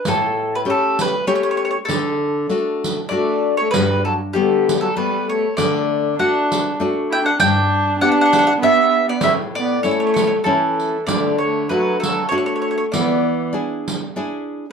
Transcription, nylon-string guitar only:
X:1
M:3/4
L:1/8
Q:"Swing" 1/4=98
K:D
V:1 name="Nylon-string guitar"
A,,2 [A,CG]2 [A,CG]2 | D,2 [A,DF]2 [A,DF]2 | G,,2 [G,A,B,]2 [G,A,B,]2 | D,2 [A,DF]2 [A,DF]2 |
G,,2 [B,DG]2 [B,DG]2 | A,,2 [A,CE]2 [A,CE]2 | D,2 [A,DF]2 [A,DF]2 | E,2 [DE^G]2 [DEG]2 |]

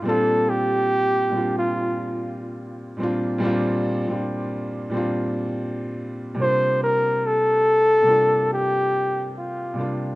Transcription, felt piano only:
X:1
M:4/4
L:1/16
Q:"Swing 16ths" 1/4=71
K:Bb
V:1 name="Felt piano"
[B,,G,CDF]4- [B,,G,CDF] z [B,,G,CDF]6- [B,,G,CDF] z [B,,G,CDF]2 | [B,,G,CDF]3 [B,,G,CDF]4 [B,,G,CDF]6- [B,,G,CDF] [C,G,B,DF]2- | [C,G,B,DF]4- [C,G,B,DF] z [C,G,B,DF]6- [C,G,B,DF] z [C,G,B,DF]2 |]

